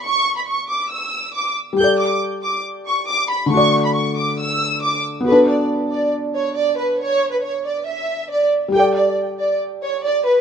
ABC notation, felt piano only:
X:1
M:4/4
L:1/8
Q:1/4=138
K:Bm
V:1 name="Felt piano"
[B,FAd]8 | [G,GAd]8 | [D,A,Fd]8 | [B,DFA]8- |
[B,DFA]8 | [G,GAd]8 |]